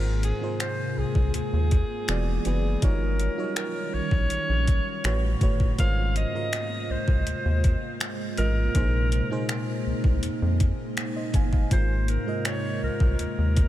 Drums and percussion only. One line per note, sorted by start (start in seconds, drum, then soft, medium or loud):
0.23 closed hi-hat medium
0.60 finger snap loud
0.60 closed hi-hat medium
1.15 kick medium
1.34 closed hi-hat medium
1.71 kick medium
1.71 closed hi-hat medium
2.08 finger snap loud
2.08 closed hi-hat medium
2.45 closed hi-hat medium
2.82 kick loud
2.82 closed hi-hat medium
3.19 closed hi-hat medium
3.56 finger snap loud
3.56 closed hi-hat medium
4.11 kick medium
4.30 closed hi-hat medium
4.68 kick medium
4.68 closed hi-hat medium
5.04 finger snap loud
5.04 closed hi-hat medium
5.41 kick medium
5.41 closed hi-hat medium
5.60 kick medium
5.79 kick loud
5.79 closed hi-hat medium
6.16 closed hi-hat medium
6.53 finger snap loud
6.53 closed hi-hat medium
7.08 kick medium
7.27 closed hi-hat medium
7.64 kick medium
7.64 closed hi-hat medium
8.00 finger snap loud
8.00 closed hi-hat medium
8.38 closed hi-hat medium
8.75 kick loud
8.75 closed hi-hat medium
9.12 closed hi-hat medium
9.49 finger snap loud
9.49 closed hi-hat medium
10.04 kick medium
10.23 closed hi-hat medium
10.60 kick loud
10.60 closed hi-hat medium
10.97 finger snap loud
10.97 closed hi-hat medium
11.34 kick medium
11.34 closed hi-hat medium
11.53 kick medium
11.71 kick medium
11.71 closed hi-hat medium
12.08 closed hi-hat medium
12.45 finger snap loud
12.45 closed hi-hat medium
13.00 kick medium
13.19 closed hi-hat medium
13.57 kick medium
13.57 closed hi-hat medium